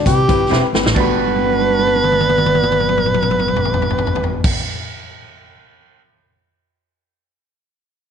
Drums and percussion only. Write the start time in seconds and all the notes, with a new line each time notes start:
0.05 kick, closed hi-hat, muted conga
0.29 kick, closed hi-hat
0.53 snare
0.74 snare, muted conga, high conga, low conga
0.86 snare
0.96 kick, crash, high conga
1.19 high tom
1.27 high tom
1.36 high tom
1.44 high tom
1.53 high tom
1.61 high tom
1.70 high tom
1.79 high tom
1.87 high tom
1.96 high tom
2.04 mid tom
2.12 mid tom
2.21 mid tom
2.29 mid tom
2.38 mid tom
2.46 mid tom
2.55 mid tom
2.63 mid tom
2.72 mid tom
2.80 mid tom
2.89 mid tom
2.97 mid tom
3.06 mid tom
3.14 mid tom
3.22 mid tom
3.31 mid tom
3.39 mid tom
3.48 mid tom
3.56 floor tom
3.65 floor tom
3.73 floor tom
3.82 floor tom
3.90 floor tom
3.98 floor tom
4.07 floor tom
4.15 floor tom
4.24 floor tom
4.44 kick, crash